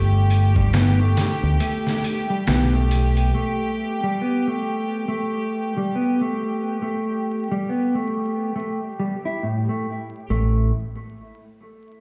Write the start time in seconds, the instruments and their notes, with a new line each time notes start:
Already playing: fingered electric bass G1, clean electric guitar A3, string section G4
0.30 closed hi-hat
0.56 clean electric guitar G3, kick
0.73 clean electric guitar B3, snare, closed hi-hat
1.00 clean electric guitar A3
1.17 snare, closed hi-hat
1.43 fingered electric bass D2
1.60 clean electric guitar A3, closed hi-hat
1.87 snare
2.04 closed hi-hat
2.30 clean electric guitar G3
2.47 fingered electric bass B1, clean electric guitar B3, snare, closed hi-hat
2.73 clean electric guitar A3
2.91 closed hi-hat
3.17 closed hi-hat
3.34 clean electric guitar A3
4.04 clean electric guitar G3
4.21 clean electric guitar B3
4.48 clean electric guitar A3
5.08 clean electric guitar A3
5.77 clean electric guitar G3
5.95 clean electric guitar B3
6.21 clean electric guitar A3
6.82 clean electric guitar A3
7.52 clean electric guitar G3
7.69 clean electric guitar B3
7.95 clean electric guitar A3
8.56 clean electric guitar A3
9.00 clean electric guitar G3
9.25 clean electric guitar E4
9.43 clean electric guitar A2
9.69 clean electric guitar A3
10.30 fingered electric bass A1, clean electric guitar A3